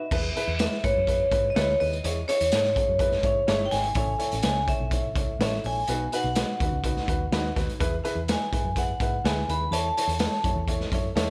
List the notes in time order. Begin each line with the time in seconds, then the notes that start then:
Already playing: E5
0.11 E2 E3 E4 G#4 B4, kick, crash
0.36 E4 G#4 B4, closed hi-hat
0.48 E2
0.59 E4 G#4 B4 E5, snare, closed hi-hat
0.72 snare
0.83 G#2 E4 G#4 B4 C#5, kick, closed hi-hat
0.96 F#2
1.07 E4 G#4 B4, kick, closed hi-hat
1.31 G#2 E4 G#4 B4, kick, closed hi-hat
1.50 D#5
1.55 D2 E4 G#4 B4 C#5, snare, closed hi-hat
1.79 D#2 E4 G#4 B4 D#5, open hi-hat
1.93 closed hi-hat
2.04 E2 E3 E4 G#4 C#5, closed hi-hat
2.28 E4 G#4 C#5, closed hi-hat
2.40 E2, closed hi-hat
2.51 G#2 E4 G#4 C#5, snare, closed hi-hat
2.65 snare
2.76 E4 G#4 C#5, kick, closed hi-hat
2.89 F#2
2.99 E4 G#4 B4, kick, closed hi-hat
3.12 snare
3.23 G#2 E4 G#4 C#5, kick, closed hi-hat
3.47 G1 E4 G#4 C#5, snare, closed hi-hat
3.66 G5
3.71 G#1 E4 G#4 C#5 G#5, snare, closed hi-hat
3.84 closed hi-hat
3.95 A1 A2 E4 A4 C#5, kick, closed hi-hat
4.18 E4 A4 C#5, closed hi-hat
4.32 A1, closed hi-hat
4.43 C#2 E4 A4 C#5 G#5, snare, closed hi-hat
4.67 E4 A4 C#5 E5, kick, closed hi-hat
4.80 B1
4.91 E4 A4 C#5, kick, closed hi-hat
5.16 C#2 E4 A4 C#5, kick, closed hi-hat
5.39 A1 E4 A4 C#5 E5, snare, closed hi-hat
5.64 A#1 E4 A4 C#5 G#5, open hi-hat
5.87 B1 B2 D#4 F#4 B4, closed hi-hat
6.12 D#4 F#4 B4 F#5, closed hi-hat
6.24 B1
6.35 D#4 F#4 B4, snare, closed hi-hat
6.60 D#2 D#4 F#4 B4, kick, closed hi-hat
6.72 C#2
6.84 D#4 F#4 B4, kick, closed hi-hat
6.96 snare
7.08 D#2 D#4 F#4 B4, kick, closed hi-hat
7.32 D#2 D#4 F#4 B4, snare, closed hi-hat
7.55 D#2 D#4 F#4 B4, kick, snare, closed hi-hat
7.69 closed hi-hat
7.80 E2 E3 E4 G#4 B4, kick, closed hi-hat
8.04 E4 G#4 B4, closed hi-hat
8.15 E2
8.28 E4 G#4 B4 G#5, snare, closed hi-hat
8.42 snare
8.52 G#2 E4 G#4 B4, kick, closed hi-hat
8.64 F#2
8.75 E4 G#4 B4 F#5, kick, closed hi-hat
9.00 G#2 E4 G#4 B4, kick, closed hi-hat
9.24 D2 E4 G#4 B4 G#5, snare, closed hi-hat
9.49 D#2 E4 G#4 B4 B5, closed hi-hat
9.71 E2 E3 E4 A4 C#5 A5, closed hi-hat
9.97 E4 A4 C#5 A5, closed hi-hat
10.08 E2, closed hi-hat
10.19 E4 A4 C#5, snare, closed hi-hat
10.32 snare
10.44 F#2 E4 A4 C#5, kick, closed hi-hat
10.56 E2
10.68 E4 A4 C#5, kick, closed hi-hat
10.80 snare
10.92 F#2 E4 A4 C#5, kick, closed hi-hat
11.15 E2 E4 A4 C#5, snare, closed hi-hat